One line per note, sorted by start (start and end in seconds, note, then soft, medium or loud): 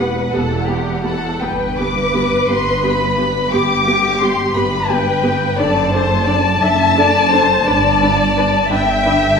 0.00 0.21 E1 medium
0.00 0.21 E2 medium
0.00 0.33 B4 medium
0.00 1.03 F#5 medium
0.33 1.28 E1 medium
0.33 1.28 E2 medium
0.33 0.41 B3 medium
0.33 0.41 G4 soft
0.33 0.68 A4 medium
0.67 0.76 B3 soft
0.67 0.75 G4 soft
0.67 1.04 G4 medium
1.04 1.12 B3 medium
1.04 1.12 G4 medium
1.04 1.41 A4 medium
1.04 1.41 F#5 medium
1.41 2.36 G1 medium
1.41 2.36 G2 medium
1.41 1.49 B3 medium
1.41 1.49 G4 medium
1.41 3.52 B4 medium
1.41 1.79 G5 medium
1.79 1.87 B3 soft
1.79 1.87 G4 soft
1.79 2.49 D6 medium
2.14 2.22 B3 soft
2.14 2.22 G4 medium
2.48 3.40 G1 medium
2.48 3.40 G2 medium
2.48 2.57 B3 medium
2.48 2.57 G4 medium
2.48 2.83 C6 medium
2.83 2.91 B3 medium
2.83 2.91 G4 medium
2.83 3.52 B5 medium
3.18 3.26 B3 soft
3.18 3.26 G4 medium
3.52 4.43 G1 medium
3.52 4.43 G2 medium
3.52 3.61 B3 medium
3.52 3.61 G4 medium
3.52 4.55 G4 medium
3.52 4.21 D6 loud
3.86 3.95 B3 medium
3.86 3.94 G4 medium
4.20 4.28 B3 medium
4.20 4.29 G4 medium
4.20 4.55 C6 medium
4.55 5.46 G1 medium
4.55 5.46 G2 medium
4.55 4.63 B3 medium
4.55 4.63 G4 medium
4.55 5.57 B4 medium
4.55 4.89 B5 medium
4.89 4.97 B3 medium
4.89 4.97 G4 medium
4.89 5.59 G5 medium
5.22 5.30 B3 medium
5.22 5.31 G4 medium
5.58 6.50 F#1 medium
5.58 6.50 F#2 medium
5.58 5.66 D4 medium
5.58 5.66 A4 medium
5.58 5.93 D5 medium
5.58 8.71 A5 loud
5.93 6.01 D4 medium
5.93 6.01 A4 medium
5.93 6.27 C5 medium
6.27 6.35 D4 medium
6.27 6.35 A4 medium
6.27 6.62 D5 medium
6.62 7.55 F#1 medium
6.62 7.54 F#2 medium
6.62 6.70 D4 medium
6.62 6.70 A4 medium
6.62 6.97 E5 medium
6.97 7.05 D4 medium
6.97 7.05 A4 medium
6.97 7.32 D5 medium
7.31 7.40 D4 medium
7.31 7.39 A4 medium
7.31 7.67 C5 medium
7.67 8.59 G1 medium
7.67 8.59 G2 medium
7.67 7.75 D4 medium
7.67 7.75 B4 medium
7.67 8.71 D5 medium
8.02 8.10 D4 medium
8.02 8.10 B4 medium
8.37 8.45 D4 medium
8.37 8.45 B4 medium
8.71 9.40 G1 medium
8.71 9.40 G2 medium
8.71 8.79 D4 medium
8.71 8.79 B4 medium
8.71 9.40 E5 medium
8.71 9.37 G5 loud
9.05 9.13 D4 medium
9.05 9.13 B4 medium